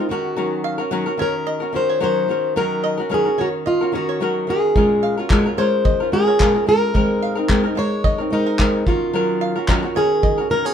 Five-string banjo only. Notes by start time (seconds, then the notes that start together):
0.64 F5
1.19 C#5
1.47 D#5
1.90 C#5
2.84 D#5
3.38 C#5
3.66 D#5
4.09 C#5
5.03 F5
5.58 C#5
5.85 D#5
6.28 C#5
7.22 F5
7.77 C5
8.04 D#5
8.46 A#4
9.41 F5
9.96 C#5
10.23 D#5
10.65 C#5